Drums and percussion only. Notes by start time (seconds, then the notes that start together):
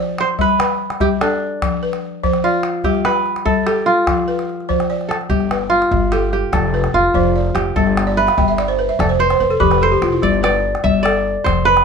0.18 calabash click
0.39 calabash thump
0.49 calabash click
0.60 calabash click
0.90 calabash click
1.00 calabash thump
1.21 calabash click
1.62 calabash thump, calabash click
1.93 calabash click
2.24 calabash thump
2.33 calabash click
2.63 calabash click
2.84 calabash thump
2.95 calabash click
3.05 calabash click
3.26 calabash click
3.36 calabash click
3.46 calabash thump, calabash click
3.67 calabash click
3.87 calabash click
3.98 calabash click
4.07 calabash thump, calabash click
4.18 calabash click
4.28 calabash click
4.39 calabash click
4.49 calabash click
4.60 calabash click
4.70 calabash thump
4.80 calabash click
4.90 calabash click
5.01 calabash click
5.11 calabash click
5.21 calabash click
5.31 calabash thump
5.40 calabash click
5.51 calabash click
5.82 calabash click
5.92 calabash thump
6.12 calabash click
6.53 calabash thump, calabash click
6.84 calabash click
7.15 calabash thump
7.56 calabash click
7.76 calabash thump
7.87 calabash click
7.97 calabash click
8.28 calabash click
8.39 calabash thump
8.58 calabash click
9.00 calabash thump, calabash click
9.30 calabash click
9.61 calabash thump
9.71 calabash click
10.02 calabash click
10.23 calabash thump
10.34 calabash click
10.44 calabash click
10.75 calabash click
10.86 calabash thump
11.06 calabash click
11.46 calabash thump, calabash click
11.77 calabash click